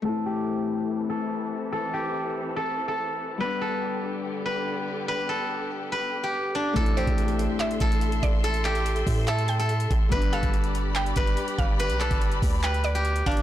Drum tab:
HH |--------------------------------|--------------------------------|--------------------------------|--------------------------------|
CP |--------------------------------|--------------------------------|--------------------------------|--------------------------------|
BD |--------------------------------|--------------------------------|--------------------------------|--------------------------------|

HH |x-x-x-x-x-x-x---x-x-x-x-x-x-x---|x-x-x-x-x-x-o---x-x-x-x-x-x-x---|x-x-x-x-x-x-x---x-x-x-x-x-x-x---|x-x-x-x-x-x-o---x-x-x-x-x-x-xxx-|
CP |----------------x---------------|----x-----------x---------------|----------------x---------------|----x-----------x---------------|
BD |o-----o-------------o-------o---|------------o---------------o---|o-----o-------------o-------o---|------o-----o---------------o---|